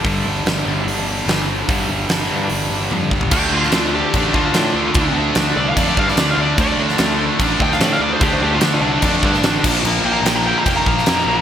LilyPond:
<<
  \new Staff \with { instrumentName = "Lead electric guitar" } { \time 4/4 \key d \phrygian \tempo 4 = 147 r1 | r1 | g'8 f'4 g'4 f'4.~ | f'8 r4 d''16 f''16 d''16 d''16 f''16 d''16 d''16 f''16 d''8 |
d''8 r2 g''16 f''16 d''16 f''16 d''16 c''16 | g'16 c''16 g'16 f'16 d'16 f'16 d'8 d'2 | r8 g''16 bes''16 g''16 bes''16 g''16 bes''16 g''16 bes''16 bes''4. | }
  \new Staff \with { instrumentName = "Distorted electric guitar" } { \time 4/4 \key d \phrygian <g, d g>1 | <g, d g>1 | <d a d'>8 <d a d'>8 <d a d'>8 <d a d'>8 <d a d'>8 <d a d'>8 <d a d'>8 <d a d'>8 | <d a d'>8 <d a d'>8 <d a d'>8 <d a d'>8 <d a d'>8 <d a d'>8 <d a d'>8 <d a d'>8 |
<d a d'>8 <d a d'>8 <d a d'>8 <d a d'>8 <d a d'>8 <d a d'>8 <d a d'>8 <d a d'>8 | <d a d'>8 <d a d'>8 <d a d'>8 <d a d'>8 <d a d'>8 <d a d'>8 <d a d'>8 <bes, f bes>8 | <bes, f bes>8 <bes, f bes>8 <bes, f bes>8 <bes, f bes>8 <bes, f bes>8 <bes, f bes>8 <bes, f bes>8 <bes, f bes>8 | }
  \new Staff \with { instrumentName = "Overdriven electric guitar" } { \clef bass \time 4/4 \key d \phrygian <g, d g>8 r4 <g, d g>8 r4 <g, d g>8 r8 | <g, d g>8 r4 <g, d g>8 r4 <g, d g>8 r8 | <d a d'>2 <d a d'>2 | <d a d'>2 <d a d'>2 |
<d a d'>2 <d a d'>2 | <d a d'>2 <d a d'>4. <bes, f bes>8~ | <bes, f bes>4. <bes, f bes>2 <bes, f bes>8 | }
  \new Staff \with { instrumentName = "Picked electric bass" } { \clef bass \time 4/4 \key d \phrygian g,,8 g,,8 g,,8 g,,8 g,,4 g,,4 | g,,8 g,,8 g,,8 g,8 g,,8 g,,8 f,8 g,,8 | d,8 d,8 d,4 a,,8 d,8 a,8 d,8 | d,8 d,8 d,8 c,8 f,8 g,8 d,8 d,8 |
d,8 d,8 d,4 a,,8 d,8 a,8 d,8 | d,8 d,8 d,8 c,8 f,8 g,8 a,,8 bes,,8 | bes,,8 bes,,8 bes,,4 f,,8 bes,,8 f,8 bes,,8 | }
  \new DrumStaff \with { instrumentName = "Drums" } \drummode { \time 4/4 <hho bd>4 <hho sn>4 hho4 <hho sn>4 | <hho bd>4 <hho sn>4 hho4 tommh8 bd16 tomfh16 | <cymc bd>8. sn16 <cymc sn>4 <cymc bd>8 bd8 <cymc sn>4 | <cymc bd>4 <cymc sn>4 <cymc bd>8 bd16 sn16 <cymc sn>4 |
<cymc bd>8. sn16 <cymc sn>4 <cymc bd>8 bd16 sn16 <cymc sn>4 | <cymc bd>4 <cymc sn>4 <cymc bd>8 bd16 sn16 <cymc sn>8 <cymc bd>8 | cymc4 <cymc sn>4 <cymc bd>8 bd16 sn16 <cymc sn>4 | }
>>